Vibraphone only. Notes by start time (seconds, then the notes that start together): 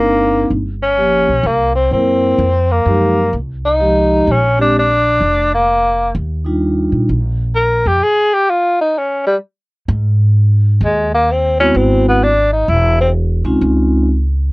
0.03 A#3 C4 D4 D#4
0.97 F3 A#3 C#4 G4
1.92 A#3 C4 E4 A#4
2.86 F3 G#3 D#4 G4
3.80 F3 G#3 D#4 G4
4.57 G#3 C4 D4 G4
6.45 G3 D4 D#4 F4
11.59 G#3 B3 C4 E4 F#4
13.45 G#3 C4 C#4 D#4 F4